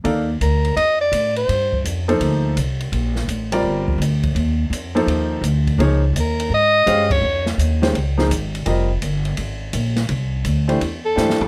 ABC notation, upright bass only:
X:1
M:4/4
L:1/8
Q:"Swing" 1/4=167
K:Eblyd
V:1 name="Upright bass" clef=bass
E,,2 D,,2 F,,2 A,,2 | G,,2 F,,2 D,,2 C,,2 | B,,,2 A,,,2 G,,,2 D,,2 | E,,2 F,,2 E,,2 D,,2 |
_D,,2 E,,2 _A,,2 G,,2 | F,,2 E,,2 _D,,2 _A,,,2 | F,,,2 G,,,2 _A,,,2 B,,,2 | C,,2 D,,2 =E,,2 G,, z |]